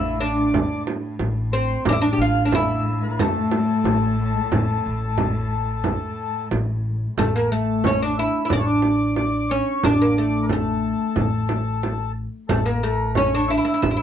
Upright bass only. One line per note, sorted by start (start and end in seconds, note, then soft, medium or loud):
0.00 0.62 A1 medium
1.19 1.74 A1 medium
1.86 2.13 A1 loud
2.18 3.28 A1 medium
3.84 4.39 A1 medium
4.51 4.79 A1 medium
4.86 5.95 A1 medium
6.51 7.06 A1 medium
7.17 8.27 A1 medium
8.50 9.60 A1 medium
9.83 10.93 A1 medium
11.16 12.25 A1 medium
12.49 13.59 A1 medium
13.83 14.02 A1 medium